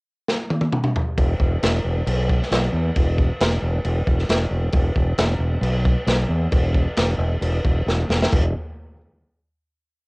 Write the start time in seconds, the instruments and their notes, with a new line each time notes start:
0.28 snare
0.50 high tom
0.61 high tom
0.73 mid tom
0.84 mid tom
0.96 floor tom
1.18 fingered electric bass E1, kick, crash
1.39 fingered electric bass E1, kick
1.63 fingered electric bass E1, snare, crash
1.84 fingered electric bass E1
2.06 fingered electric bass B1, crash
2.30 kick
2.43 snare
2.51 fingered electric bass B1, snare, crash
2.73 fingered electric bass E2
2.96 fingered electric bass E1, kick, crash
3.18 kick
3.40 fingered electric bass E1, snare, crash
3.62 fingered electric bass E1
3.85 fingered electric bass E1, crash
4.07 fingered electric bass E1, kick
4.19 snare
4.29 fingered electric bass E1, snare, crash
4.50 fingered electric bass E1
4.72 fingered electric bass E1, kick, crash
4.96 fingered electric bass E1, kick
5.18 fingered electric bass E1, snare, crash
5.38 fingered electric bass E1
5.61 fingered electric bass B1, crash
5.85 kick
6.07 fingered electric bass B1, snare, crash
6.29 fingered electric bass E2
6.52 fingered electric bass E1, kick, crash
6.75 kick
6.97 fingered electric bass E1, snare, crash
7.18 fingered electric bass E1
7.41 fingered electric bass E1, crash
7.65 fingered electric bass E1, kick
7.86 fingered electric bass E1, snare
8.09 fingered electric bass E1, snare
8.22 snare
8.32 fingered electric bass E1, kick, floor tom, crash